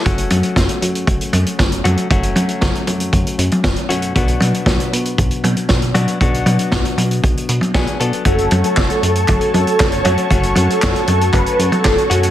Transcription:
<<
  \new Staff \with { instrumentName = "Analog synth pad" } { \time 4/4 \key fis \minor \tempo 4 = 117 r1 | r1 | r1 | r1 |
<fis' cis'' a'' cis'''>1~ | <fis' cis'' a'' cis'''>1 | }
  \new Staff \with { instrumentName = "Analog synth lead" } { \time 4/4 \key fis \minor r1 | r1 | r1 | r1 |
a'8. a'8 a'8 a'8. a'8. cis''8. | r8. a'8. a'8 b'8. a'8. fis'8 | }
  \new Staff \with { instrumentName = "Clean electric guitar" } { \time 4/4 \key fis \minor <fis a cis' fis'>2.~ <fis a cis' fis'>8 <fis a cis' fis'>8 | <fis a cis' fis'>2.~ <fis a cis' fis'>8 <b, fis a cis' fis'>8 | <b, fis b d' fis'>2.~ <b, fis b d' fis'>8 <b, fis b d' fis'>8 | <b, fis b d' fis'>2. <b, fis b d' gis'>8 <fis b d' a'>8 |
<fis a cis' fis'>2.~ <fis a cis' fis'>8 <fis a cis' fis'>8 | <fis a cis' fis'>2.~ <fis a cis' fis'>8 <b, fis a cis' fis'>8 | }
  \new Staff \with { instrumentName = "Analog synth bass" } { \clef bass \time 4/4 \key fis \minor fis,,8 fis,8 fis,,8 fis,8 fis,,8 fis,8 fis,,8 fis,8 | fis,,8 fis,8 fis,,8 fis,8 fis,,8 fis,8 fis,,8 fis,8 | b,,8 b,8 b,,8 b,8 b,,8 b,8 b,,8 b,8 | b,,8 b,8 b,,8 b,8 b,,8 b,8 b,,8 b,8 |
fis,,8 fis,8 fis,,8 fis,8 fis,,8 fis,8 fis,,8 fis,8 | fis,,8 fis,8 fis,,8 fis,8 fis,,8 fis,8 fis,,8 fis,8 | }
  \new DrumStaff \with { instrumentName = "Drums" } \drummode { \time 4/4 <hh bd>16 hh16 <hh tommh>16 hh16 <hh bd sn>16 hh16 hh16 hh16 <hh bd>16 hh16 <hh tommh>16 hh16 <hh bd sn>16 hh16 <hh tommh>16 hh16 | <hh bd>16 hh16 <hh tommh>16 hh16 <hh bd sn>16 hh16 <hh tommh>16 hh16 <hh bd>16 hh16 hh16 <hh tommh>16 <hh bd sn>16 hh16 hh16 hh16 | <hh bd>16 hh16 <hh tommh>16 hh16 <hh bd sn>16 hh16 hh16 hh16 <hh bd>16 hh16 <hh tommh>16 hh16 <hh bd sn>16 hh16 <hh tommh>16 hh16 | <hh bd>16 hh16 <hh tommh>16 hh16 <hh bd sn>16 hh16 <hh tommh>16 hh16 <hh bd>16 hh16 hh16 <hh tommh>16 <hh bd sn>16 hh16 hh16 hh16 |
<hh bd>16 hh16 <hh tommh>16 hh16 <hc hh bd sn>16 hh16 hh16 hh16 <hc hh bd>16 hh16 <hh tommh>16 hh16 <hc hh bd sn>16 hh16 <hh tommh>16 hh16 | <hh bd>16 hh16 <hh tommh>16 hh16 <hc hh bd sn>16 hh16 <hh tommh>16 hh16 <hc hh bd>16 hh16 hh16 <hh tommh>16 <hc hh bd sn>16 hh16 hh16 hh16 | }
>>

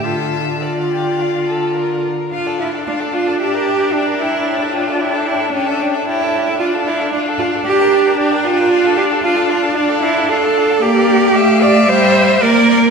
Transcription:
<<
  \new Staff \with { instrumentName = "Violin" } { \time 4/4 \key d \minor \tempo 4 = 113 e''4 d''2~ d''8 r8 | f''16 d''16 f''16 d''16 f''16 d''16 f''16 d''16 e''16 d''16 e''16 d''16 e''16 d''16 e''16 d''16 | cis''16 e''16 cis''16 e''16 cis''16 e''16 cis''16 e''16 cis''16 e''16 cis''16 e''16 cis''16 e''16 cis''16 e''16 | d''16 f''16 d''16 f''16 d''16 f''16 d''16 f''16 d''16 g''16 d''16 g''16 d''16 g''16 d''16 g''16 |
d''16 f''16 d''16 f''16 d''16 f''16 d''16 f''16 d''16 f''16 d''16 f''16 d''16 f''16 d''16 f''16 | \key g \dorian f''1 | }
  \new Staff \with { instrumentName = "Violin" } { \time 4/4 \key d \minor a'4 a'8 g'8 f'8 a'8 bes'4 | f'16 a'16 f'16 a'16 f'16 a'16 f'16 a'16 g'16 bes'16 g'16 bes'16 g'16 bes'16 g'16 bes'16 | g'16 a'16 g'16 a'16 g'16 a'16 g'16 a'16 g'16 a'16 g'16 a'16 g'16 a'16 g'16 a'16 | f'16 a'16 f'16 a'16 f'16 a'16 f'16 a'16 g'16 bes'16 g'16 bes'16 g'16 bes'16 g'16 bes'16 |
f'16 a'16 f'16 a'16 f'16 a'16 f'16 a'16 f'16 a'16 f'16 a'16 f'16 a'16 f'16 a'16 | \key g \dorian d''4 e''2 d''8 d''8 | }
  \new Staff \with { instrumentName = "Cello" } { \time 4/4 \key d \minor d2.~ d8 r8 | f'8 e'8 d'8 f'8 g'4 d'8 e'8~ | e'8 f'8 e'8 e'8 cis'8 d'8 e'4 | f'8 e'8 d'8 f'8 g'4 d'8 f'8~ |
f'8 g'8 f'8 f'8 d'8 e'8 a'4 | \key g \dorian g'4. d''8 c''4 bes'4 | }
  \new Staff \with { instrumentName = "Viola" } { \time 4/4 \key d \minor f'4 f'2~ f'8 r8 | d'1~ | d'1 | d'1~ |
d'1 | \key g \dorian bes4 a4 g4 bes4 | }
>>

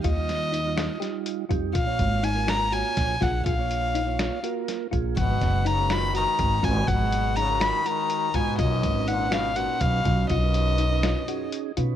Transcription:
<<
  \new Staff \with { instrumentName = "Violin" } { \time 7/8 \key bes \phrygian \tempo 4 = 123 ees''2 r4. | f''4 aes''8 bes''8 aes''4 ges''8 | f''2 r4. | ges''4 bes''8 ces'''8 bes''4 aes''8 |
ges''4 bes''8 ces'''8 bes''4 aes''8 | dis''4 fis''8 f''8 fis''8 f''4 | dis''2~ dis''8 r4 | }
  \new Staff \with { instrumentName = "Synth arpeggio sound" } { \time 7/8 \key bes \phrygian f'4 ees'8 f'8 g'4 f'8 | f'4 ees'8 f'8 ges'4 f'8 | f'4 ees'8 f'8 ges'4 f'8 | f4 ees'8 f'8 ges'4 f'8 |
f4 ees'8 f'8 ges'4 f'8 | f'4 dis'8 f'8 fis'4 f'8 | f'4 dis'8 f'8 fis'4 f'8 | }
  \new Staff \with { instrumentName = "Tonewheel organ" } { \time 7/8 \key bes \phrygian <g ees' g'>16 <g ees' f'>4 <g ees' f'>8. <g ees' f'>4 <g ees' g'>8 | r16 <bes f' des''>4 <bes f' bes'>8. <bes f' des''>4 <bes f' aes'>8~ | <bes f' aes'>16 <bes f' des''>4 <bes f' des''>8. <bes f' bes'>4 <bes f' aes'>8 | r16 <ges aes ces''>4 <aes ges' ces''>8. <aes ges' ces''>4 <aes ges' ces''>8~ |
<aes ges' ces''>16 <ges aes aes'>4 <aes ges' bes'>8. <aes ges' bes'>4 <aes ges' ces''>8 | r16 <cis' dis' b'>4 <cis' dis' b'>8. <cis' dis' b'>4 <cis' dis' fis'>8~ | <cis' dis' fis'>16 <cis' dis' b'>4 <cis' dis' b'>8. <cis' dis' aes'>4 <cis' dis' b'>8 | }
  \new Staff \with { instrumentName = "Trombone" } { \clef bass \time 7/8 \key bes \phrygian r2. r8 | r2. r8 | r2. r8 | ces4 des8 ees8 ees4 ces8 |
ces4 des8 ees8 ees4 ces8 | fis,4 bes,8 b,8 bes,8 b,4 | fis,2~ fis,8 r4 | }
  \new Staff \with { instrumentName = "Upright bass" } { \clef bass \time 7/8 \key bes \phrygian ees,2 r4 f,8 | bes,,8 aes,,2 bes,,8 bes,,8 | bes,,2 r4 bes,,8 | aes,,8 ges,,2 aes,,8 aes,,8 |
aes,,2 r4 aes,8 | b,,8 aes,,2 b,,8 b,,8 | b,,2 r4 b,8 | }
  \new DrumStaff \with { instrumentName = "Drums" } \drummode { \time 7/8 <hh bd>8 <hh sn>8 hh8 <hh sn>8 <hh sn>8 hh8 <hh bd>8 | <hh bd>8 <hh bd>8 hh8 <hh sn>8 hh8 <hh bd sn>8 <hh bd sn>8 | <hh bd>8 hh8 hh8 <hh sn>8 hh8 <hh sn>8 <hh bd>8 | <hh bd>8 <hh bd sn>8 hh8 <hh sn>8 hh8 <hh bd>8 <hh bd>8 |
<hh bd>8 hh8 hh8 <hh sn>8 hh8 hh8 <hh bd>8 | <hh bd>8 <hh bd>8 hh8 <hh sn>8 hh8 <hh bd>8 <hh bd>8 | <hh bd>8 hh8 hh8 <hh sn>8 hh8 hh8 hh8 | }
>>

